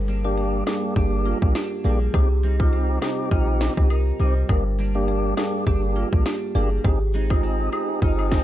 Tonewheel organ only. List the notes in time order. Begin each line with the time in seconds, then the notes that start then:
0.24 A#3 D4 G4
0.67 A#3 D4 G4
0.96 A#3 D4 G4
1.42 A#3 D4 G4
1.84 A#3 D4 G4
2.14 C4 D#4 G4
2.60 C4 D#4 G4
3.02 C4 D#4 G4
3.31 C4 D#4 G4
3.77 C4 D#4 G4
4.20 C4 D#4 G4
4.49 A#3 D4 G4
4.95 A#3 D4 G4
5.37 A#3 D4 G4
5.67 A#3 D4 G4
6.12 A#3 D4 G4
6.55 A#3 D4 G4
6.84 C4 D#4 G#4
7.30 C4 D#4 G#4
7.72 C4 D#4 G#4
8.02 C4 D#4 G#4